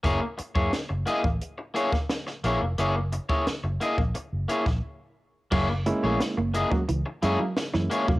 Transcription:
<<
  \new Staff \with { instrumentName = "Clean electric guitar" } { \time 4/4 \key fis \mixolydian \tempo 4 = 88 <ais e' gis' cis''>16 r8 <ais e' gis' cis''>16 r8 <ais e' gis' dis''>16 r8. <ais e' gis' cis''>16 r8. <ais e' gis' cis''>16 r16 | <ais e' gis' cis''>16 r8 <ais e' gis' cis''>16 r8 <ais e' gis' dis''>16 r8. <ais e' gis' cis''>16 r4 r16 | <ais e' gis' cis''>16 r8 <ais e' gis' cis''>16 r8 <ais e' gis' dis''>16 r8. <ais e' gis' cis''>16 r8. <ais e' gis' cis''>16 r16 | }
  \new Staff \with { instrumentName = "Reed electric piano" } { \time 4/4 \key fis \mixolydian r1 | r1 | r8 <gis ais cis' e'>8. r8 <gis ais cis' fis'>16 <cis' e'>16 r16 <gis ais cis' e'>16 r16 <cis' e'>16 <gis ais cis' e'>8. | }
  \new Staff \with { instrumentName = "Clean electric guitar" } { \clef bass \time 4/4 \key fis \mixolydian r1 | r1 | fis16 r8 a16 r16 ais16 r16 fis16 e16 r8 fis16 r16 e16 r16 fis16 | }
  \new Staff \with { instrumentName = "Fingered electric bass" } { \clef bass \time 4/4 \key fis \mixolydian fis,,16 r8 fis,16 r16 fis,,16 r16 a,,16 r4. ais,,16 eis,,16 | fis,,8. r8 fis,,16 r16 ais,,16 r16 fis,,16 r16 ais,,16 r4 | fis,,8. ais,,16 r16 fis,,8 r16 cis,16 r16 fis,16 r8 fis,16 r16 eis,,16 | }
  \new DrumStaff \with { instrumentName = "Drums" } \drummode { \time 4/4 <hh bd>8 hh16 bd16 <hh sn>8 hh16 bd16 hh8 hh16 <bd sn>16 <hh sn>16 sn16 hh8 | hh8 hh16 bd16 <hh sn>8 hh16 bd16 hh8 hh16 <bd sn>16 r4 | <cymc bd>8 hh8 <hh sn>8 hh16 bd16 hh8 hh8 <hh sn>16 sn16 hh16 bd16 | }
>>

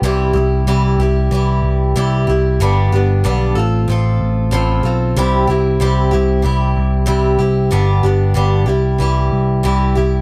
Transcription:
<<
  \new Staff \with { instrumentName = "Steel-string acoustic guitar" } { \time 4/4 \key c \major \tempo 4 = 94 <c e g e' g'>8 <g e' g'>8 <c e g e' g'>8 <g e' g'>8 <e g e' g'>4 <c e g e' g'>8 <g e' g'>8 | <g, d g b d' g'>8 <g b d' g'>8 <g, d g b d' g'>8 <c' f' a'>8 <f c' f' a'>4 <a, f c' f' a'>8 <c' f' a'>8 | <c g c' e' g'>8 <c' e' g'>8 <c g c' e' g'>8 <c' e' g'>8 <g c' e' g'>4 <c g c' e' g'>8 <c' e' g'>8 | <g, d g b d' g'>8 <g b d' g'>8 <g, d g b d' g'>8 <g e' g'>8 <e g e' g'>4 <c e g e' g'>8 <g e' g'>8 | }
  \new Staff \with { instrumentName = "Picked electric bass" } { \clef bass \time 4/4 \key c \major c,8 c,8 c,8 c,8 c,8 c,8 c,8 c,8 | g,,8 g,,8 b,,8 a,,8 a,,8 a,,8 a,,8 b,,8 | c,8 c,8 c,8 c,8 c,8 c,8 c,8 c,8 | g,,8 g,,8 g,,8 c,8 c,8 c,8 c,8 c,8 | }
>>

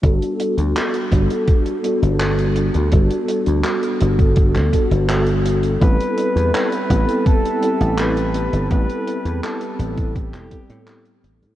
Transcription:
<<
  \new Staff \with { instrumentName = "Analog synth pad" } { \time 4/4 \key g \major \tempo 4 = 83 r1 | r1 | <g' e'' a'' b''>1~ | <g' e'' a'' b''>1 | }
  \new Staff \with { instrumentName = "Flugelhorn" } { \time 4/4 \key g \major r1 | r1 | b'4 b'4 a'4 b'4 | b'4 a'8 r8 g'4. r8 | }
  \new Staff \with { instrumentName = "Tine electric piano" } { \time 4/4 \key g \major <g b d' fis' a'>4. <g b d' fis' a'>4 <g b d' fis' a'>4. | <g b d' fis' a'>4. <g b d' fis' a'>4 <g b d' fis' a'>4. | <g b c' e' a'>4. <g b c' e' a'>4 <g b c' e' a'>4. | <g b c' e' a'>4. <g b c' e' a'>4 <g b c' e' a'>4. | }
  \new Staff \with { instrumentName = "Slap bass" } { \clef bass \time 4/4 \key g \major g,,16 r8 d,16 r8 g,,16 r4 g,,4 d,16 | g,,16 r8 d,16 r8 g,,8. d,16 r16 g,,4~ g,,16 | a,,16 r8 e,16 r8 a,,16 r4 a,,4 g,,16 | a,,16 r8 e,16 r8 a,,8. e,,16 r16 a,8. a,,16 a,16 | }
  \new DrumStaff \with { instrumentName = "Drums" } \drummode { \time 4/4 <hh bd>16 hh16 hh16 hh16 <hc hh>16 hh16 <hh bd>16 hh16 <hh bd>16 hh16 hh16 hh16 <hc hh>16 hh16 hh16 hh16 | <hh bd>16 hh16 hh16 hh16 <hc hh>16 hh16 hh16 <hh bd>16 <hh bd>16 <hc hh>16 <hh bd>16 hh16 <hc hh>16 hh16 hh16 hh16 | <hh bd>16 hh16 hh16 hh16 <hc hh>16 hh16 <hh bd>16 hh16 <hh bd>16 hh16 hh16 hh16 <hc hh>16 hh16 hh16 hh16 | <hh bd>16 hh16 hh16 hh16 <hc hh>16 hh16 hh16 <hh bd>16 <hh bd>16 <hc hh>16 <hh bd>16 hh16 <hc hh>16 hh16 hh16 hh16 | }
>>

